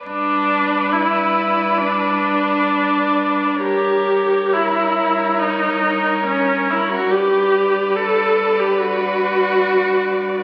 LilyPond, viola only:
\new Staff \with { instrumentName = "Viola" } { \time 4/4 \key g \major \tempo 4 = 69 d'4 e'4 d'2 | g'4 e'4 ees'4 des'8 e'16 fis'16 | g'4 a'8. g'16 fis'2 | }